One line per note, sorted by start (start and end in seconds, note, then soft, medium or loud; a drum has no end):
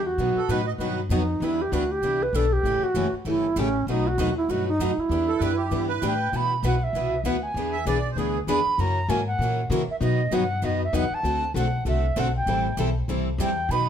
0.00 0.17 E2 medium
0.07 0.67 F#4 medium
0.18 0.35 B2 medium
0.18 0.38 B2 medium
0.18 0.38 D#3 medium
0.18 0.38 F#3 medium
0.18 0.38 B3 medium
0.18 0.38 D#4 medium
0.18 0.39 F#4 medium
0.18 0.38 B4 medium
0.36 0.50 A4 medium
0.36 muted upright bass stroke soft
0.48 0.78 A2 medium
0.48 0.60 B2 medium
0.48 0.60 D#3 medium
0.48 0.60 F#3 medium
0.48 0.60 B3 medium
0.48 0.60 D#4 medium
0.48 0.61 F#4 medium
0.48 0.66 B4 medium
0.48 0.60 B4 medium
0.67 0.72 D#5 medium
0.78 1.09 G2 medium
0.78 0.99 B2 medium
0.78 1.00 D#3 medium
0.78 1.00 F#3 medium
0.78 1.00 B3 medium
0.78 1.00 D#4 medium
0.78 1.00 F#4 medium
0.78 1.02 B4 medium
0.78 1.00 B4 medium
1.09 1.40 F2 medium
1.09 1.21 B2 medium
1.09 1.21 D#3 medium
1.09 1.21 F#3 medium
1.09 1.22 B3 loud
1.09 1.46 D#4 medium
1.09 1.22 D#4 medium
1.09 1.22 F#4 medium
1.09 1.22 B4 medium
1.40 1.71 E2 medium
1.40 1.61 E3 medium
1.40 1.61 G3 medium
1.40 1.61 B3 medium
1.40 1.61 D4 medium
1.40 1.61 E4 medium
1.40 1.63 E4 medium
1.40 1.61 G4 medium
1.40 1.62 B4 medium
1.61 1.74 G4 medium
1.72 2.01 D2 medium
1.72 1.83 E3 medium
1.72 1.83 G3 medium
1.72 1.83 B3 medium
1.72 1.83 D4 medium
1.72 1.83 E4 medium
1.72 1.93 F#4 medium
1.72 1.83 G4 medium
1.72 1.83 B4 loud
1.91 2.24 G4 medium
2.02 2.32 C2 medium
2.02 2.22 E3 medium
2.02 2.22 G3 medium
2.02 2.23 B3 medium
2.02 2.22 D4 medium
2.02 2.22 E4 medium
2.02 2.23 G4 medium
2.02 2.23 B4 medium
2.23 2.37 B4 medium
2.33 2.63 B1 medium
2.33 2.44 E3 medium
2.33 2.45 G3 medium
2.33 2.44 B3 medium
2.33 2.45 D4 loud
2.33 2.45 E4 medium
2.33 2.45 G4 medium
2.33 2.54 A4 medium
2.33 2.45 B4 medium
2.53 2.85 G4 loud
2.63 2.80 A1 medium
2.63 2.84 C#3 medium
2.63 2.84 E3 medium
2.63 2.84 G3 medium
2.63 2.84 A3 medium
2.63 2.84 C#4 medium
2.63 2.85 E4 medium
2.63 2.84 G4 medium
2.63 2.85 A4 medium
2.81 3.13 F#4 loud
2.81 muted upright bass stroke soft
2.94 3.11 F#1 medium
2.94 3.06 C#3 medium
2.94 3.05 E3 medium
2.94 3.06 G3 medium
2.94 3.06 A3 medium
2.94 3.06 C#4 medium
2.94 3.06 E4 medium
2.94 3.06 G4 medium
2.94 3.06 A4 loud
3.12 muted upright bass stroke soft
3.25 3.55 G1 medium
3.25 3.46 C#3 medium
3.25 3.45 E3 medium
3.25 3.45 G3 medium
3.25 3.46 A3 medium
3.25 3.45 C#4 medium
3.25 3.45 E4 medium
3.25 3.61 E4 medium
3.25 3.46 G4 medium
3.25 3.45 A4 medium
3.56 3.86 A1 medium
3.56 3.68 C#3 medium
3.56 3.67 E3 medium
3.56 3.67 G3 loud
3.56 3.68 A3 medium
3.56 3.67 C#4 medium
3.56 3.89 C#4 medium
3.56 3.67 E4 loud
3.56 3.68 G4 loud
3.56 3.67 A4 loud
3.87 4.17 B1 medium
3.87 4.07 B2 medium
3.87 4.07 F#3 medium
3.87 4.07 A3 medium
3.87 4.07 D#4 medium
3.87 4.09 D#4 medium
3.87 4.07 F#4 medium
3.87 4.07 B4 medium
4.07 4.37 F#4 loud
4.18 4.48 D#2 medium
4.18 4.28 B2 medium
4.18 4.29 F#3 loud
4.18 4.29 A3 medium
4.18 4.29 D#4 medium
4.18 4.29 F#4 medium
4.18 4.29 B4 medium
4.37 4.52 E4 medium
4.49 4.78 G2 medium
4.49 4.68 B2 medium
4.49 4.68 F#3 medium
4.49 4.68 A3 medium
4.49 4.69 D#4 medium
4.49 4.67 F#4 medium
4.49 4.69 F#4 medium
4.49 4.69 B4 medium
4.68 5.01 D#4 medium
4.79 4.96 F#2 medium
4.79 4.90 B2 medium
4.79 4.91 F#3 medium
4.79 4.91 A3 loud
4.79 4.91 D#4 medium
4.79 4.91 F#4 loud
4.79 4.91 B4 loud
4.98 6.03 E4 medium
4.98 muted upright bass stroke soft
5.09 5.39 E2 medium
5.09 5.30 E3 medium
5.09 5.30 G3 medium
5.09 5.30 B3 medium
5.09 5.30 D4 medium
5.09 5.30 E4 medium
5.09 5.30 G4 medium
5.09 5.31 B4 medium
5.28 5.41 A4 medium
5.39 5.70 F#2 medium
5.39 5.52 E3 medium
5.39 5.52 G3 medium
5.39 5.52 B3 medium
5.39 5.52 D4 medium
5.39 5.52 E4 medium
5.39 5.52 G4 medium
5.39 5.56 B4 loud
5.39 5.52 B4 loud
5.57 5.86 G4 medium
5.71 6.01 G2 medium
5.71 5.91 E3 medium
5.71 5.91 G3 medium
5.71 5.91 B3 medium
5.71 5.91 D4 medium
5.71 5.91 E4 medium
5.71 5.91 G4 medium
5.71 5.91 B4 medium
5.88 6.29 B4 medium
6.02 6.32 A2 medium
6.02 6.13 E3 medium
6.02 6.13 G3 medium
6.02 6.13 B3 medium
6.02 6.13 D4 medium
6.02 6.13 E4 loud
6.02 6.13 G4 medium
6.02 6.13 B4 loud
6.06 6.38 G5 medium
6.32 6.62 B2 medium
6.32 6.52 B2 medium
6.32 6.53 E3 medium
6.32 6.53 B3 medium
6.32 6.53 E4 medium
6.32 6.53 F#4 medium
6.32 6.53 B4 medium
6.32 6.65 B5 loud
6.63 6.92 B1 medium
6.63 6.74 B2 medium
6.63 6.74 E3 loud
6.63 6.74 B3 medium
6.63 6.74 E4 medium
6.63 6.75 F#4 medium
6.63 6.74 B4 medium
6.63 6.85 F#5 medium
6.84 7.28 E5 medium
6.93 7.23 C2 medium
6.93 7.14 B2 medium
6.93 7.14 E3 medium
6.93 7.14 B3 medium
6.93 7.15 E4 medium
6.93 7.15 F#4 medium
6.93 7.15 B4 medium
7.24 7.54 D2 medium
7.24 7.35 B2 medium
7.24 7.35 E3 medium
7.24 7.36 B3 medium
7.24 7.36 E4 medium
7.24 7.36 F#4 loud
7.24 7.36 B4 medium
7.24 7.44 F#5 medium
7.43 7.86 G#5 medium
7.54 7.85 E2 medium
7.54 7.76 E3 medium
7.54 7.76 B3 medium
7.54 7.76 D4 medium
7.54 7.76 G#4 medium
7.54 7.76 B4 medium
7.72 7.85 E5 loud
7.85 8.15 B1 medium
7.85 7.97 E3 medium
7.85 7.97 B3 medium
7.85 7.97 D4 medium
7.85 7.97 G#4 medium
7.85 7.98 B4 loud
7.85 8.11 D5 medium
8.10 8.17 C5 medium
8.16 8.46 D2 medium
8.16 8.37 E3 medium
8.16 8.37 B3 medium
8.16 8.37 D4 medium
8.16 8.40 G#4 medium
8.16 8.37 G#4 medium
8.16 8.37 B4 medium
8.47 8.64 E2 medium
8.47 8.58 E3 medium
8.47 8.59 B3 loud
8.47 8.59 D4 medium
8.47 8.59 G#4 medium
8.47 8.59 B4 medium
8.47 8.82 B5 loud
8.65 muted upright bass stroke soft
8.78 9.08 F#2 medium
8.78 8.98 C#3 medium
8.78 8.98 E3 medium
8.78 8.98 F#3 medium
8.78 8.98 A#3 medium
8.78 8.98 C#4 medium
8.78 8.98 E4 medium
8.78 8.98 F#4 medium
8.78 8.99 A#4 medium
8.78 9.11 A#5 loud
9.09 9.38 G#2 medium
9.09 9.19 C#3 medium
9.09 9.19 E3 medium
9.09 9.20 F#3 medium
9.09 9.20 A#3 medium
9.09 9.20 C#4 medium
9.09 9.20 E4 medium
9.09 9.20 F#4 loud
9.09 9.20 A#4 medium
9.09 9.26 G#5 loud
9.27 9.67 F#5 medium
9.39 9.69 A#2 medium
9.39 9.59 C#3 medium
9.39 9.59 E3 medium
9.39 9.60 F#3 medium
9.39 9.59 A#3 medium
9.39 9.60 F#4 medium
9.43 9.61 C#4 medium
9.43 9.61 E4 medium
9.43 9.61 A#4 medium
9.70 9.87 C#3 loud
9.70 9.81 C#3 medium
9.70 9.81 E3 medium
9.70 9.82 F#3 loud
9.70 9.81 A#3 medium
9.70 9.82 C#4 loud
9.70 9.82 E4 loud
9.70 9.81 F#4 loud
9.70 9.82 A#4 loud
9.88 9.96 E5 medium
9.88 muted upright bass stroke soft
10.01 10.31 B2 medium
10.01 10.21 B2 medium
10.01 10.21 D#3 medium
10.01 10.21 F#3 medium
10.01 10.21 B3 medium
10.01 10.21 D#4 medium
10.01 10.20 F#4 medium
10.01 10.21 B4 medium
10.01 10.35 D#5 medium
10.31 10.61 G2 medium
10.31 10.42 B2 medium
10.31 10.43 D#3 medium
10.31 10.42 F#3 medium
10.31 10.43 B3 medium
10.31 10.43 D#4 loud
10.31 10.43 F#4 medium
10.31 10.43 B4 medium
10.31 10.66 F#5 medium
10.62 10.92 F#2 medium
10.62 10.81 B2 medium
10.62 10.82 D#3 medium
10.62 10.82 F#3 medium
10.62 10.82 B3 medium
10.62 10.82 D#4 medium
10.62 10.82 F#4 medium
10.62 10.82 B4 medium
10.62 10.82 D#5 medium
10.84 10.94 E5 medium
10.93 11.10 E2 medium
10.93 11.04 B2 medium
10.93 11.04 D#3 medium
10.93 11.04 F#3 medium
10.93 11.05 B3 medium
10.93 11.05 D#4 loud
10.93 11.04 F#4 loud
10.93 11.05 B4 loud
10.93 11.16 F#5 medium
11.11 11.56 A5 loud
11.11 muted upright bass stroke soft
11.23 11.53 D2 medium
11.23 11.44 D3 medium
11.23 11.44 A3 medium
11.23 11.44 C4 medium
11.23 11.44 F#4 medium
11.23 11.44 A4 medium
11.54 11.84 B1 medium
11.54 11.66 D3 medium
11.54 11.66 A3 medium
11.54 11.66 C4 loud
11.54 11.67 F#4 medium
11.54 11.67 A4 medium
11.54 11.84 F#5 medium
11.85 12.15 C2 medium
11.85 12.05 D3 medium
11.85 12.05 A3 medium
11.85 12.05 C4 medium
11.85 12.05 F#4 medium
11.85 12.05 A4 medium
11.85 12.21 E5 medium
12.16 12.46 B1 medium
12.16 12.27 D3 loud
12.16 12.27 A3 medium
12.16 12.27 C4 medium
12.16 12.27 F#4 loud
12.16 12.27 A4 medium
12.16 12.35 F#5 medium
12.36 12.75 G5 medium
12.46 12.76 A1 medium
12.46 12.66 E3 medium
12.46 12.66 G3 medium
12.46 12.67 C4 medium
12.46 12.66 E4 medium
12.46 12.67 A4 medium
12.77 13.07 B1 medium
12.77 12.88 E3 medium
12.77 12.88 G3 medium
12.77 12.88 C4 medium
12.77 12.88 E4 loud
12.77 12.88 A4 medium
13.08 13.38 C2 medium
13.08 13.28 E3 medium
13.08 13.28 G3 medium
13.08 13.28 C4 medium
13.08 13.28 E4 medium
13.08 13.28 A4 medium
13.38 13.68 E2 loud
13.38 13.50 E3 loud
13.38 13.50 G3 medium
13.38 13.50 C4 loud
13.38 13.50 E4 medium
13.38 13.50 A4 loud
13.38 13.72 G5 loud
13.69 13.89 B2 medium
13.69 13.89 D#3 medium
13.69 13.89 F#3 medium
13.69 13.89 B3 medium
13.69 13.89 D#4 medium
13.69 13.89 F#4 medium
13.69 13.89 B4 medium
13.69 13.89 B5 loud